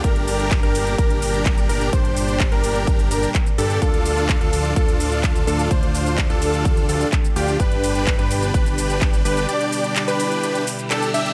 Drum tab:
HH |xxoxxxoxxxoxxxox|xxoxxxoxxxoxxxox|xxoxxxo-xxoxxxox|xxoxxxoxxxoxxxox|
SH |x-xxx-xxxxxxxxxx|x-xxx-xxxxxxxxxx|x-xxx-xxxxxxxxxx|x-xxx-xxxxxxxxxx|
CP |----x-------x---|----x-------x---|----x-------x---|----x-------x---|
BD |o---o---o---o---|o---o---o---o---|o---o---o---o---|o---o---o---o---|

HH |xxoxxxoxxxoxxxox|xxoxxxoxxxoxxxox|
SH |x-xxx-xxxxxxxxxx|xxxxxxxxxxxxxxxx|
CP |----x-------x---|----x-------x---|
BD |o---o---o---o---|----------------|